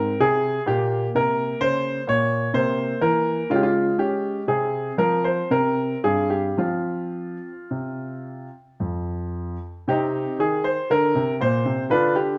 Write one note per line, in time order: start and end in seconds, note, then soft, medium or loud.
0.00 0.11 G#2 medium
0.00 0.63 C4 soft
0.00 0.21 A#4 medium
0.20 0.57 C3 medium
0.20 0.60 G#4 medium
0.66 1.04 A#2 medium
0.66 2.51 A#3 soft
0.66 1.07 G4 medium
1.15 1.52 C3 soft
1.15 1.61 A#4 medium
1.60 1.98 C#3 medium
1.60 2.01 C5 medium
2.07 2.45 A#2 soft
2.07 2.49 C#5 medium
2.53 2.92 C3 soft
2.53 3.45 A#3 soft
2.53 3.02 C5 medium
3.01 3.40 E3 medium
3.01 3.50 A#4 medium
3.50 3.89 C#3 medium
3.50 4.45 G#3 soft
3.50 3.57 F4 medium
3.56 3.63 G4 medium
3.63 3.93 F4 medium
3.98 4.38 C#4 soft
3.98 4.41 G4 medium
4.48 4.89 C3 soft
4.48 5.47 C4 soft
4.48 4.92 G#4 medium
4.98 5.40 F3 soft
4.98 5.24 A#4 medium
5.24 5.51 C5 medium
5.51 5.93 C3 soft
5.51 6.55 C4 soft
5.51 5.96 A#4 medium
6.03 6.48 G2 soft
6.03 6.31 G#4 medium
6.30 6.59 G4 medium
6.57 7.36 F3 soft
6.57 7.48 C4 soft
6.57 8.46 F4 medium
7.71 8.47 C3 soft
8.80 9.55 F2 soft
9.88 10.24 C3 medium
9.88 10.36 C4 medium
9.88 10.36 D#4 medium
9.88 10.39 G4 medium
10.39 10.75 D#3 soft
10.39 10.64 G#4 medium
10.64 10.89 C5 medium
10.90 11.13 D3 medium
10.90 11.33 A#4 medium
11.15 11.38 C3 medium
11.41 11.64 A#2 medium
11.41 11.83 C5 medium
11.65 11.89 C3 soft
11.90 12.38 D3 medium
11.90 12.14 D4 medium
11.90 12.14 F4 medium
11.90 12.15 B4 medium
12.16 12.38 G4 medium